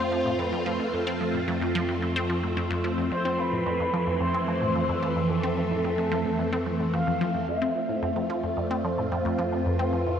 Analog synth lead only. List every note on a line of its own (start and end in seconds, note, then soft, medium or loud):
0.00 0.40 C5 loud
0.38 0.95 B4 loud
0.93 1.48 A4 medium
3.11 3.41 C5 loud
3.39 4.21 B4 loud
4.21 5.04 C5 loud
5.03 5.30 B4 loud
5.30 6.90 A4 medium
6.94 7.44 F5 loud
7.48 8.59 E5 loud
8.58 8.86 D5 loud
8.85 9.67 C5 loud
9.66 10.20 B4 medium